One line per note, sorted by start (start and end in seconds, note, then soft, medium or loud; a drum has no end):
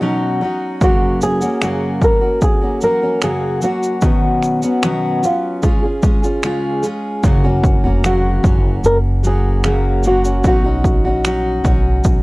0.00 0.41 B2 medium
0.00 0.40 F#3 medium
0.00 0.41 C#4 medium
0.00 0.38 D#4 medium
0.00 0.42 D#4 medium
0.00 0.42 F#4 medium
0.41 0.81 F#3 medium
0.41 0.82 C#4 medium
0.41 0.82 D#4 medium
0.41 0.83 F#4 medium
0.81 1.42 F#2 medium
0.81 1.42 C#3 medium
0.81 1.42 F#3 medium
0.81 1.42 A#3 medium
0.81 1.42 C#4 medium
0.81 1.23 F#4 medium
0.81 1.40 F#4 medium
0.81 kick loud
0.81 shaker medium
1.22 2.04 G#4 medium
1.22 shaker soft
1.41 1.61 F#3 soft
1.41 1.62 A#3 soft
1.41 1.62 C#4 soft
1.41 1.62 F#4 soft
1.41 shaker soft
1.62 2.02 F#2 medium
1.62 2.02 C#3 medium
1.62 2.00 F#3 medium
1.62 2.01 A#3 medium
1.62 2.02 C#4 medium
1.62 2.03 F#4 medium
1.62 finger snap medium
1.62 shaker medium
2.01 2.22 F#3 soft
2.01 2.22 A#3 soft
2.01 2.21 C#4 medium
2.01 2.20 F#4 medium
2.01 2.43 A#4 medium
2.01 kick medium
2.01 shaker soft
2.21 2.63 F#3 soft
2.21 2.62 A#3 soft
2.21 2.62 C#4 soft
2.21 2.60 F#4 soft
2.42 2.80 G#4 medium
2.42 kick medium
2.42 shaker medium
2.61 2.81 F#3 soft
2.61 2.82 A#3 soft
2.61 2.82 C#4 soft
2.61 2.82 F#4 soft
2.81 3.02 F#3 medium
2.81 3.03 A#3 medium
2.81 3.02 C#4 medium
2.81 3.00 F#4 medium
2.81 3.23 A#4 medium
2.81 shaker soft
3.02 3.22 F#3 soft
3.02 3.23 A#3 soft
3.02 3.23 C#4 soft
3.02 3.22 F#4 soft
3.22 3.63 F#2 medium
3.22 3.63 C#3 medium
3.22 3.60 F#3 medium
3.22 3.62 A#3 medium
3.22 3.63 C#4 medium
3.22 3.64 F#4 medium
3.22 3.63 G#4 medium
3.22 finger snap medium
3.22 shaker medium
3.62 4.01 F#3 medium
3.62 4.03 A#3 soft
3.62 4.02 C#4 medium
3.62 5.24 F#4 medium
3.62 4.03 F#4 medium
3.62 shaker soft
3.83 shaker soft
4.02 4.62 B2 medium
4.02 4.63 D#3 medium
4.02 4.63 F#3 medium
4.02 4.63 B3 medium
4.02 4.62 C#4 medium
4.02 4.61 F#4 medium
4.02 kick medium
4.02 shaker medium
4.43 finger snap soft
4.43 shaker soft
4.62 4.82 F#3 soft
4.62 4.83 B3 soft
4.62 4.83 C#4 soft
4.62 4.82 F#4 medium
4.62 shaker soft
4.83 5.23 B2 medium
4.83 5.23 D#3 medium
4.83 5.21 F#3 medium
4.83 5.22 B3 medium
4.83 5.23 C#4 medium
4.83 5.24 F#4 medium
4.83 finger snap medium
4.83 shaker medium
5.23 5.62 F#3 medium
5.23 5.63 B3 soft
5.23 5.62 C#4 medium
5.23 6.40 F4 medium
5.23 shaker soft
5.62 5.83 C#3 medium
5.62 5.83 G#3 medium
5.62 5.83 C#4 medium
5.62 5.83 F4 medium
5.62 5.81 G#4 medium
5.62 kick medium
5.62 shaker medium
5.83 6.02 C#4 soft
5.83 6.03 F4 soft
5.83 6.03 G#4 soft
6.02 6.23 G#3 medium
6.02 6.23 C#4 medium
6.02 6.23 F4 medium
6.02 6.21 G#4 medium
6.02 kick medium
6.02 shaker soft
6.22 6.43 C#4 soft
6.22 6.44 F4 soft
6.22 6.43 G#4 soft
6.22 shaker soft
6.43 6.84 C#3 medium
6.43 6.82 G#3 medium
6.43 6.83 C#4 medium
6.43 6.84 F4 medium
6.43 6.85 G#4 medium
6.43 finger snap medium
6.43 shaker soft
6.83 7.23 G#3 medium
6.83 7.24 C#4 medium
6.83 7.25 F4 medium
6.83 7.25 G#4 medium
6.83 shaker soft
7.24 7.80 F#1 loud
7.24 7.44 F#2 medium
7.24 7.44 C#3 medium
7.24 7.45 F#3 medium
7.24 7.45 A#3 medium
7.24 7.43 C#4 medium
7.24 7.42 F#4 medium
7.24 kick loud
7.24 shaker medium
7.44 7.85 F#3 soft
7.44 7.85 A#3 medium
7.44 7.84 C#4 medium
7.44 7.83 F#4 medium
7.64 kick medium
7.64 shaker soft
7.84 8.40 F1 medium
7.84 8.03 F#3 soft
7.84 8.04 A#3 soft
7.84 8.04 C#4 soft
7.84 8.04 F#4 soft
8.04 8.44 C#3 medium
8.04 8.42 F#3 medium
8.04 8.43 A#3 medium
8.04 8.44 C#4 medium
8.04 8.85 F#4 medium
8.04 8.45 F#4 medium
8.04 finger snap medium
8.04 shaker medium
8.43 8.81 F#1 medium
8.43 9.23 F#3 medium
8.43 9.23 A#3 medium
8.43 9.25 C#4 medium
8.43 9.26 F#4 medium
8.43 kick medium
8.43 shaker soft
8.84 10.41 F#1 medium
8.84 8.96 A#4 loud
8.84 shaker medium
9.23 9.64 F#3 medium
9.23 9.64 A#3 medium
9.23 9.64 C#4 medium
9.23 9.65 F#4 medium
9.23 10.02 G#4 medium
9.23 shaker soft
9.64 10.04 F#2 medium
9.64 10.04 C#3 medium
9.64 10.03 F#3 medium
9.64 10.04 A#3 medium
9.64 10.05 C#4 medium
9.64 10.05 F#4 medium
9.64 finger snap medium
9.64 shaker medium
10.04 10.24 F#3 medium
10.04 10.25 A#3 medium
10.04 10.24 C#4 medium
10.04 10.23 F#4 medium
10.04 10.43 F#4 medium
10.04 shaker medium
10.24 10.44 F#3 soft
10.24 10.45 A#3 soft
10.24 10.45 C#4 soft
10.24 10.44 F#4 soft
10.24 shaker medium
10.44 11.00 B1 loud
10.44 10.65 B2 medium
10.44 10.65 F#3 medium
10.44 10.65 C#4 medium
10.44 10.65 D#4 medium
10.44 10.63 F#4 medium
10.44 12.02 F#4 medium
10.44 kick loud
10.44 shaker medium
10.64 11.06 C#4 soft
10.64 11.05 D#4 soft
10.64 11.04 F#4 medium
10.84 kick medium
10.84 shaker soft
11.04 11.61 A#1 medium
11.04 11.25 C#4 soft
11.04 11.25 D#4 soft
11.04 11.25 F#4 medium
11.25 11.63 F#3 medium
11.25 11.64 C#4 medium
11.25 11.65 D#4 medium
11.25 11.66 F#4 medium
11.25 finger snap medium
11.25 shaker medium
11.64 12.02 B1 medium
11.64 12.23 F#3 medium
11.64 12.23 C#4 medium
11.64 12.23 D#4 medium
11.64 12.23 F#4 medium
11.64 kick medium
11.64 shaker medium
12.04 12.23 B1 medium
12.04 kick medium
12.04 shaker medium